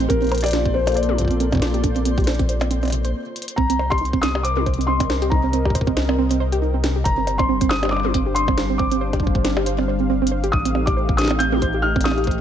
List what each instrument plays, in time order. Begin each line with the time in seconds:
Already playing: analog synth pad G4 F5, synth texture C5
0.00 synth arpeggio sound C4, closed hi-hat
0.09 analog synth bass A#1, analog synth pad A#3, synth arpeggio sound C4, felt piano A#4, kick, closed hi-hat
0.22 synth arpeggio sound C4, closed hi-hat
0.24 closed hi-hat
0.27 closed hi-hat
0.29 synth arpeggio sound C5, closed hi-hat
0.32 analog synth pad F4, closed hi-hat, percussion blips
0.35 closed hi-hat
0.38 closed hi-hat
0.41 synth arpeggio sound G4, felt piano D5, closed hi-hat
0.44 closed hi-hat, percussion blips
0.46 closed hi-hat
0.48 analog synth pad A4, closed hi-hat
0.51 synth arpeggio sound D4, snare, closed hi-hat
0.53 closed hi-hat
0.65 synth arpeggio sound C4, kick
0.74 synth arpeggio sound C4, felt piano C5
0.83 synth arpeggio sound G4, analog synth pad D5, closed hi-hat, percussion blips
0.90 closed hi-hat
0.92 closed hi-hat
0.94 synth arpeggio sound C5, felt piano D5, closed hi-hat
0.97 closed hi-hat
1.03 closed hi-hat
1.09 synth arpeggio sound C4, high tom
1.18 synth arpeggio sound C5, kick, closed hi-hat
1.22 kick
1.25 kick
1.28 synth arpeggio sound C4, kick, closed hi-hat
1.40 synth arpeggio sound C4, closed hi-hat
1.52 synth arpeggio sound C4, kick, closed hi-hat, percussion blips
1.55 kick
1.57 kick
1.60 synth arpeggio sound C5, kick, snare, closed hi-hat
1.74 synth arpeggio sound G4, closed hi-hat
1.84 synth arpeggio sound D4, kick, closed hi-hat
1.96 synth arpeggio sound C4, closed hi-hat
2.05 synth arpeggio sound C4, closed hi-hat
2.18 synth arpeggio sound G4, kick, closed hi-hat
2.20 closed hi-hat
2.24 snare, closed hi-hat
2.27 synth arpeggio sound C5, closed hi-hat
2.31 closed hi-hat
2.34 closed hi-hat
2.39 synth arpeggio sound C4, kick, closed hi-hat
2.49 synth arpeggio sound C5, closed hi-hat
2.61 synth arpeggio sound C4, closed hi-hat, percussion blips
2.71 synth arpeggio sound C4, closed hi-hat
2.83 synth arpeggio sound C4, closed hi-hat, percussion blips
2.85 closed hi-hat, percussion blips
2.88 closed hi-hat, percussion blips
2.90 closed hi-hat, percussion blips
2.92 synth arpeggio sound C3, closed hi-hat
3.05 synth arpeggio sound C5, closed hi-hat
3.36 closed hi-hat
3.42 closed hi-hat
3.48 closed hi-hat
3.56 analog synth bass C2, analog synth pad C3, synth arpeggio sound C4, felt piano A#5, kick
3.64 analog synth pad C4
3.70 synth arpeggio sound C4, closed hi-hat
3.79 synth arpeggio sound C5, percussion blips
3.90 synth arpeggio sound G4, felt piano C6, kick, closed hi-hat, percussion blips
3.98 synth arpeggio sound D#4, closed hi-hat
4.03 analog synth pad A#4, closed hi-hat
4.13 synth arpeggio sound C4, analog synth pad D#5, kick
4.22 synth arpeggio sound C4, felt piano D#6, snare, closed hi-hat
4.35 synth arpeggio sound G4, percussion blips
4.43 synth arpeggio sound C5, felt piano D6, closed hi-hat
4.57 synth arpeggio sound C4, high tom
4.66 synth arpeggio sound C5, kick, closed hi-hat
4.74 closed hi-hat
4.79 synth arpeggio sound C4, closed hi-hat
4.87 synth arpeggio sound C4, felt piano C6
5.00 synth arpeggio sound C4, kick, closed hi-hat, percussion blips
5.10 synth arpeggio sound C5, snare
5.22 synth arpeggio sound G4, closed hi-hat
5.30 synth arpeggio sound D#4, felt piano A#5, kick
5.44 synth arpeggio sound C4
5.53 synth arpeggio sound C4, closed hi-hat
5.65 synth arpeggio sound G4, kick, percussion blips
5.70 kick
5.75 synth arpeggio sound C5, kick, closed hi-hat
5.81 kick
5.87 synth arpeggio sound C4, kick
5.97 synth arpeggio sound C5, snare, closed hi-hat
6.09 synth arpeggio sound C4, percussion blips
6.19 synth arpeggio sound C4
6.31 synth arpeggio sound C4, closed hi-hat
6.40 synth arpeggio sound C5
6.52 synth arpeggio sound G4, closed hi-hat
6.62 synth arpeggio sound D#4
6.74 synth arpeggio sound C4
6.84 synth arpeggio sound C4, snare, closed hi-hat
6.96 synth arpeggio sound G4
7.04 analog synth bass G1, analog synth pad G3, synth arpeggio sound C5, felt piano A#5, kick, closed hi-hat
7.17 synth arpeggio sound C4, analog synth pad C5
7.25 analog synth pad D4, synth arpeggio sound C5, closed hi-hat, percussion blips
7.38 synth arpeggio sound C4, felt piano C6, kick, percussion blips
7.49 synth arpeggio sound C4
7.61 synth arpeggio sound C4, kick, closed hi-hat
7.66 analog synth pad F5, felt piano D#6
7.71 synth arpeggio sound C5, snare
7.83 synth arpeggio sound G4, closed hi-hat, percussion blips
7.85 percussion blips
7.89 felt piano D6, percussion blips
7.92 synth arpeggio sound D4, percussion blips
7.97 percussion blips
8.00 percussion blips
8.05 synth arpeggio sound C4, high tom
8.14 synth arpeggio sound C4, kick, closed hi-hat
8.26 synth arpeggio sound G4
8.35 synth arpeggio sound C5, felt piano C6, closed hi-hat
8.48 synth arpeggio sound C4, kick, percussion blips
8.58 synth arpeggio sound C5, snare, closed hi-hat
8.70 synth arpeggio sound C4
8.78 synth arpeggio sound C4, felt piano D6, kick
8.92 synth arpeggio sound C4, closed hi-hat
9.01 synth arpeggio sound C5
9.13 synth arpeggio sound G4, kick, closed hi-hat, percussion blips
9.20 synth arpeggio sound D4, kick
9.27 kick
9.35 synth arpeggio sound C4, kick
9.45 synth arpeggio sound C4, snare, closed hi-hat
9.57 synth arpeggio sound G4, percussion blips
9.66 synth arpeggio sound C5, closed hi-hat
9.79 synth arpeggio sound C4, percussion blips
9.88 synth arpeggio sound C5
10.00 synth arpeggio sound C4
10.10 synth arpeggio sound C4
10.22 synth arpeggio sound C4
10.27 closed hi-hat
10.32 synth arpeggio sound C5
10.44 synth arpeggio sound G4, closed hi-hat
10.52 analog synth bass A1, analog synth pad A3, synth arpeggio sound D#4, felt piano D#6, kick
10.62 synth arpeggio sound C4, analog synth pad D#4 G4, closed hi-hat
10.75 synth arpeggio sound C4, percussion blips
10.86 synth arpeggio sound G4, felt piano D6, kick, closed hi-hat, percussion blips
10.97 synth arpeggio sound C5
11.09 synth arpeggio sound C4, kick
11.17 synth arpeggio sound C5, felt piano D#6, snare, closed hi-hat
11.22 snare
11.25 snare
11.28 synth arpeggio sound C4, snare, percussion blips
11.39 synth arpeggio sound C4, felt piano G6, closed hi-hat
11.52 synth arpeggio sound C4, high tom
11.62 synth arpeggio sound C5, kick, closed hi-hat
11.74 synth arpeggio sound G4
11.82 synth arpeggio sound D#4, felt piano F6
11.96 synth arpeggio sound C4, kick, percussion blips
12.01 felt piano D#6, closed hi-hat, percussion blips
12.05 synth arpeggio sound C4, snare, percussion blips
12.12 percussion blips
12.18 synth arpeggio sound G4, closed hi-hat
12.24 synth arpeggio sound C5, kick, closed hi-hat
12.31 closed hi-hat